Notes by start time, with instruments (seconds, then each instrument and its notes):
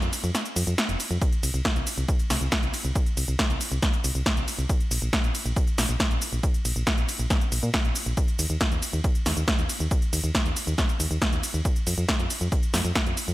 0.02 fm bass F2, closed hi-hat, shaker
0.13 open hi-hat, ride, shaker
0.24 fm bass F2, closed hi-hat, shaker
0.35 snare, closed hi-hat, shaker
0.46 closed hi-hat, shaker
0.56 fm bass F2, open hi-hat, ride, shaker
0.67 fm bass F2, closed hi-hat, shaker
0.78 snare, closed hi-hat, shaker
0.89 fm bass F1, closed hi-hat, shaker
1.00 open hi-hat, ride, shaker
1.11 fm bass F2, closed hi-hat, shaker
1.22 kick, closed hi-hat, shaker
1.32 closed hi-hat, shaker
1.43 fm bass C2, open hi-hat, ride, shaker
1.54 fm bass C2, closed hi-hat, shaker
1.65 kick, snare, closed hi-hat, shaker
1.76 fm bass C2, closed hi-hat, shaker
1.87 open hi-hat, ride, shaker
1.98 fm bass C2, closed hi-hat, shaker
2.09 kick, closed hi-hat, shaker
2.19 closed hi-hat, shaker
2.30 fm bass C2, snare, open hi-hat, ride, shaker
2.41 fm bass C2, closed hi-hat, shaker
2.52 kick, snare, closed hi-hat, shaker
2.63 fm bass C2, closed hi-hat, shaker
2.74 open hi-hat, ride, shaker
2.85 fm bass C2, closed hi-hat, shaker
2.96 kick, closed hi-hat, shaker
3.06 closed hi-hat, shaker
3.17 fm bass C2, open hi-hat, ride, shaker
3.28 fm bass C2, closed hi-hat, shaker
3.39 kick, snare, closed hi-hat, shaker
3.50 fm bass C2, closed hi-hat, shaker
3.61 open hi-hat, ride, shaker
3.72 fm bass C2, closed hi-hat, shaker
3.83 kick, snare, closed hi-hat, shaker
3.93 closed hi-hat, shaker
4.04 fm bass C2, open hi-hat, ride, shaker
4.15 fm bass C2, closed hi-hat, shaker
4.26 kick, snare, closed hi-hat, shaker
4.37 fm bass C2, closed hi-hat, shaker
4.48 open hi-hat, ride, shaker
4.59 fm bass C2, closed hi-hat, shaker
4.69 kick, closed hi-hat, shaker
4.80 closed hi-hat, shaker
4.91 fm bass A#1, open hi-hat, ride, shaker
5.02 fm bass A#1, closed hi-hat, shaker
5.13 kick, snare, closed hi-hat, shaker
5.24 fm bass A#1, closed hi-hat, shaker
5.35 open hi-hat, ride, shaker
5.46 fm bass A#1, closed hi-hat, shaker
5.56 kick, closed hi-hat, shaker
5.67 closed hi-hat, shaker
5.78 fm bass A#1, snare, open hi-hat, ride, shaker
5.89 fm bass A#1, closed hi-hat, shaker
6.00 kick, snare, closed hi-hat, shaker
6.11 fm bass A#1, closed hi-hat, shaker
6.22 open hi-hat, ride, shaker
6.33 fm bass A#1, closed hi-hat, shaker
6.43 kick, closed hi-hat, shaker
6.54 closed hi-hat, shaker
6.65 fm bass A#1, open hi-hat, ride, shaker
6.76 fm bass A#1, closed hi-hat, shaker
6.87 kick, snare, closed hi-hat, shaker
6.98 fm bass A#1, closed hi-hat, shaker
7.09 open hi-hat, ride, shaker
7.19 fm bass A#1, closed hi-hat, shaker
7.30 kick, snare, closed hi-hat, shaker
7.41 closed hi-hat, shaker
7.52 fm bass A#1, open hi-hat, ride, shaker
7.63 fm bass A#2, closed hi-hat, shaker
7.74 kick, snare, closed hi-hat, shaker
7.85 fm bass A#1, closed hi-hat, shaker
7.95 open hi-hat, ride, shaker
8.06 fm bass A#1, closed hi-hat, shaker
8.17 kick, closed hi-hat, shaker
8.28 closed hi-hat, shaker
8.39 fm bass D#2, open hi-hat, ride, shaker
8.50 fm bass D#2, closed hi-hat, shaker
8.61 kick, snare, closed hi-hat, shaker
8.72 fm bass D#2, closed hi-hat, shaker
8.82 open hi-hat, ride, shaker
8.93 fm bass D#2, closed hi-hat, shaker
9.04 kick, closed hi-hat, shaker
9.15 closed hi-hat, shaker
9.26 fm bass D#2, snare, open hi-hat, ride, shaker
9.37 fm bass D#2, closed hi-hat, shaker
9.48 kick, snare, closed hi-hat, shaker
9.59 fm bass D#2, closed hi-hat, shaker
9.69 open hi-hat, ride, shaker
9.80 fm bass D#2, closed hi-hat, shaker
9.91 kick, closed hi-hat, shaker
10.02 closed hi-hat, shaker
10.13 fm bass D#2, open hi-hat, ride, shaker
10.24 fm bass D#2, closed hi-hat, shaker
10.35 kick, snare, closed hi-hat, shaker
10.46 fm bass D#2, closed hi-hat, shaker
10.56 open hi-hat, ride, shaker
10.67 fm bass D#2, closed hi-hat, shaker
10.78 kick, snare, closed hi-hat, shaker
10.89 closed hi-hat, shaker
11.00 fm bass D#2, open hi-hat, ride, shaker
11.11 fm bass D#2, closed hi-hat, shaker
11.22 kick, snare, closed hi-hat, shaker
11.33 fm bass D#2, closed hi-hat, shaker
11.43 open hi-hat, ride, shaker
11.54 fm bass D#2, closed hi-hat, shaker
11.65 kick, closed hi-hat, shaker
11.76 closed hi-hat, shaker
11.87 fm bass F2, open hi-hat, ride, shaker
11.98 fm bass F2, closed hi-hat, shaker
12.09 kick, snare, closed hi-hat, shaker
12.19 fm bass F2, closed hi-hat, shaker
12.30 open hi-hat, ride, shaker
12.41 fm bass F2, closed hi-hat, shaker
12.52 kick, closed hi-hat, shaker
12.63 closed hi-hat, shaker
12.74 fm bass F2, snare, open hi-hat, ride, shaker
12.85 fm bass F2, closed hi-hat, shaker
12.96 kick, snare, closed hi-hat, shaker
13.06 fm bass F2, closed hi-hat, shaker
13.17 open hi-hat, ride, shaker
13.28 fm bass F2, closed hi-hat, shaker